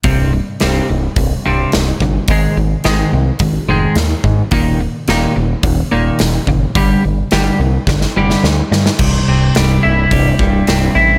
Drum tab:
CC |----------------|----------------|----------------|----------------|
HH |o---o---o---o---|o---o---o---o---|o---o---o---o---|o---o-----------|
SD |----o-------o---|----o-------o---|----o-------o---|----o---oo-oo-oo|
BD |o-------o-----o-|o-------o-----o-|o-------o-----o-|o-------o-------|

CC |x---------------|
HH |----o---o---o---|
SD |----o-------o---|
BD |o-------o-o-----|